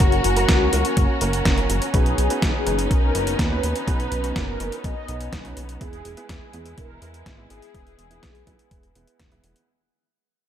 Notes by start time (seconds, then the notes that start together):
Already playing: C#4 F#4 A#5
0.00 F#1 A#3 C#4 F#4 A#4, kick, closed hi-hat
0.12 closed hi-hat
0.24 F#1 F#4, closed hi-hat
0.37 A#3 C#4 F#4 A#4, closed hi-hat
0.49 C#2, kick, snare, closed hi-hat
0.73 C#2 A#3 C#4 F#4 A#4, closed hi-hat
0.85 closed hi-hat
0.97 F#1, kick, closed hi-hat
1.21 F#1 A#3 C#4 F#4 A#4, closed hi-hat
1.33 closed hi-hat
1.45 F#1, kick, snare, closed hi-hat
1.58 A#3 C#4 F#4 A#4, closed hi-hat
1.70 F#1, closed hi-hat
1.82 closed hi-hat
1.94 B1 B3 C#4 D#4 F#4 G#4 B4, kick, closed hi-hat
2.06 closed hi-hat
2.18 B1, closed hi-hat
2.30 C#4 D#4 F#4 B4, closed hi-hat
2.42 B1 G#4, kick, snare, closed hi-hat
2.67 F#1 C#4 D#4 F#4 B4, closed hi-hat
2.79 closed hi-hat
2.91 B1 A#4, kick, closed hi-hat
3.15 F#1 C#4 D#4 F#4 B4, closed hi-hat
3.27 closed hi-hat
3.39 D#2 B4, kick, snare, closed hi-hat
3.51 C#4 D#4 F#4 B4
3.63 D#2, closed hi-hat
3.76 closed hi-hat
3.87 B1 C#4 D#4 F#4 B4, kick, closed hi-hat
4.00 closed hi-hat
4.12 B1, closed hi-hat
4.24 C#4 D#4 F#4 B4, closed hi-hat
4.36 F#1 A#4, kick, snare, closed hi-hat
4.60 F#1 C#4 D#4 F#4 B4, closed hi-hat
4.72 closed hi-hat
4.84 B1 D#5, kick, closed hi-hat
5.08 B1 C#4 D#4 F#4 B4, closed hi-hat
5.21 closed hi-hat
5.33 B1, kick, snare, closed hi-hat
5.45 C#4 D#4 F#4 B4, closed hi-hat
5.57 B1, closed hi-hat
5.69 closed hi-hat
5.81 E1 G#3 B3 E4 G#4 B4, kick, closed hi-hat
5.93 closed hi-hat
6.05 E1, closed hi-hat
6.17 B3 E4 G#4 B4, closed hi-hat
6.29 E1 G#4, kick, snare, closed hi-hat
6.53 E2 B3 E4 G#4 B4, closed hi-hat
6.66 closed hi-hat
6.78 E1 A#4, kick, closed hi-hat
7.02 E2 B3 E4 G#4 B4, closed hi-hat
7.14 closed hi-hat
7.26 G#1, kick, snare, closed hi-hat
7.38 B3 E4 G#4 B4
7.50 G#1 G#4, closed hi-hat
7.62 closed hi-hat
7.74 E1 B3 E4 G#4 B4, kick, closed hi-hat
7.87 closed hi-hat
7.99 E1, closed hi-hat
8.11 B3 E4 G#4 B4, closed hi-hat
8.23 B1, kick, snare, closed hi-hat
8.35 closed hi-hat
8.47 B1 B3 E4 G#4 B4, kick, closed hi-hat
8.59 closed hi-hat
8.71 E1, kick, closed hi-hat
8.83 closed hi-hat
8.95 E1 B3 E4 G#4 B4, closed hi-hat
9.07 closed hi-hat
9.20 E1, kick, snare, closed hi-hat
9.32 B3 E4 G#4 B4, closed hi-hat
9.44 E1, closed hi-hat
9.56 closed hi-hat